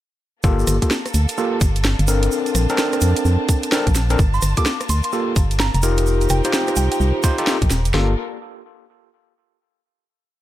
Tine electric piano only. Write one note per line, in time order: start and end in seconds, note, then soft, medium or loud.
0.44 0.76 A#3 loud
0.44 0.76 F4 medium
0.44 0.76 G4 medium
0.44 0.76 A4 loud
0.82 0.91 A#3 medium
0.82 0.91 F4 medium
0.82 0.91 G4 medium
0.82 0.91 A4 medium
1.38 1.58 A#3 medium
1.38 1.58 F4 medium
1.38 1.58 G4 medium
1.38 1.58 A4 loud
2.08 2.66 C4 medium
2.08 2.66 D4 medium
2.08 2.66 A4 medium
2.08 2.66 A#4 medium
2.70 3.70 C4 medium
2.70 3.70 D4 medium
2.70 3.70 A4 medium
2.70 3.70 A#4 loud
3.72 3.87 C4 medium
3.72 3.87 D4 medium
3.72 3.87 A4 medium
3.72 3.87 A#4 loud
4.10 4.18 C4 loud
4.10 4.18 D4 medium
4.10 4.18 A4 medium
4.10 4.18 A#4 loud
4.57 4.66 A#3 medium
4.57 4.66 F4 medium
4.57 4.66 G4 medium
4.57 4.66 A4 medium
5.13 5.33 A#3 medium
5.13 5.33 F4 medium
5.13 5.33 G4 medium
5.13 5.33 A4 loud
5.83 6.41 D#4 medium
5.83 6.41 F4 medium
5.83 6.41 G4 medium
5.83 6.41 A#4 loud
6.45 7.22 D#4 medium
6.45 7.22 F4 medium
6.45 7.22 G4 medium
6.45 7.22 C5 loud
7.24 7.36 D#4 medium
7.24 7.36 F4 medium
7.24 7.36 G4 medium
7.24 7.36 C5 loud
7.38 7.57 D#4 medium
7.38 7.57 F4 medium
7.38 7.57 G4 medium
7.38 7.57 A4 loud
7.94 8.13 A#3 medium
7.94 8.13 F4 medium
7.94 8.13 G4 medium
7.94 8.13 A4 medium